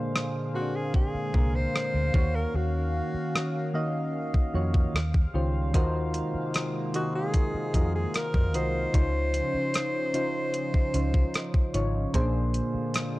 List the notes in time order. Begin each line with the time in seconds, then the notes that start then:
Already playing: A#2 D3 G#3 A#3 D4 G#4 C5 F5
0.16 cross-stick
0.54 A#2 A#3 C4 F#4 G#4 C5
0.61 D4
0.75 G#4
0.94 G#4, kick
1.14 muted fingered electric bass stroke
1.34 C2 A#2 A#3 D4 G#4 A#4, kick
1.55 C5
1.76 cross-stick
1.94 D2
2.14 D#2 D#3 A#3 C#4 F#4 C#5 F5, kick
2.35 A#4
2.54 D#2 F#4
3.14 muted fingered electric bass stroke
3.36 cross-stick
3.74 D#3 A#3 F#4 D#5 F5
4.34 muted fingered electric bass stroke, kick
4.54 F2 D#3 A#3 F4 F#4 C#5
4.74 kick
4.94 D#2 C#3 G3 C5, cross-stick
5.14 kick
5.34 C#2 D#3 C#4 F4 G4 C5
5.74 D#2 C3 D#3 G#3 A#3 D#4 F4 F#4 A#4 C5, kick, closed hi-hat
6.14 closed hi-hat
6.34 muted fingered electric bass stroke
6.54 cross-stick, closed hi-hat
6.94 D#3 D#4 F4 F#4 A#4 D#5, closed hi-hat
7.15 G#4
7.34 kick, closed hi-hat
7.54 muted fingered electric bass stroke
7.74 F2 D#3 D#4 F4 F#4 A#4 D#5, kick, closed hi-hat
7.96 G#4
8.14 A#4, cross-stick, closed hi-hat
8.34 F#2, kick
8.54 C2 D#3 D#4 F4 F#4 A#4 C5 D#5, closed hi-hat
8.93 C#2 C#3 F3 C#4 D#4 F4 C5, kick, closed hi-hat
9.34 closed hi-hat
9.54 muted fingered electric bass stroke
9.74 cross-stick, closed hi-hat
10.13 C#3 C#4 D#4 F4 C5, closed hi-hat
10.54 closed hi-hat
10.74 muted fingered electric bass stroke, kick
10.94 C#2 C#3 C#4 D#4 F4 C5, closed hi-hat
11.14 kick
11.34 cross-stick, closed hi-hat
11.54 kick
11.74 G#1 C#3 C#4 D#4 F4 C#5, closed hi-hat
12.13 A#1 A#2 D3 G#3 A#3 C#4 F4 G#4 C5, kick, closed hi-hat
12.21 D4
12.54 closed hi-hat
12.74 muted fingered electric bass stroke
12.94 cross-stick, closed hi-hat